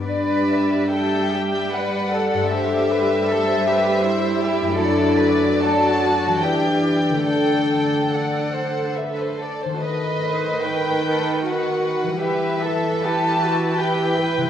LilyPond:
<<
  \new Staff \with { instrumentName = "Violin section" } { \time 3/4 \key g \major \tempo 4 = 75 d''4 g''4 fis''4 | e''2. | d''4 a''4 g''4 | g''4 fis''4 e''16 c''16 d''16 c''16 |
\key e \minor dis''4 g''4 fis''4 | e''4 a''4 g''4 | }
  \new Staff \with { instrumentName = "Violin section" } { \time 3/4 \key g \major << { d''8 e''8 e''4 d''4 | c''4 c''2 | d''2 d''4 | d''4 d''8 c''8 b'8 a'8 |
\key e \minor b'8 c''8 b'2 | b'8 a'8 b'4 b'4 | } \\ { b'4 a'8 g'8 b'8 a'8 | g'4 a'8 b'8 c''8 g'8 | a'8 b'8 a'8 fis'8 g'8 g'8 | a'4 r2 |
b'4 b'8 a'8 b'8 b'8~ | b'4 a'8 g'8 b'4 | } >> }
  \new Staff \with { instrumentName = "Cello section" } { \time 3/4 \key g \major b'4 a'8 g'8 b'8 a'8 | g'8 b'8 a'8 g'8 e'4~ | e'4 fis'4 g'4 | a'2~ a'8 r8 |
\key e \minor b'2 fis'4 | g'8 a'8 g'8 fis'8 g'8 b'8 | }
  \new Staff \with { instrumentName = "Harp" } { \time 3/4 \key g \major <g, b d' d''>2. | <g, a c' a'>2. | <fis, a d' a'>2 <e g d' b'>4 | <d a d' d''>2. |
\key e \minor <dis a fis' b'>2. | <e g e' b'>2. | }
  \new Staff \with { instrumentName = "Viola section" } { \clef bass \time 3/4 \key g \major g2. | g2. | fis2 e4 | d2~ d8. r16 |
\key e \minor dis2. | e2. | }
>>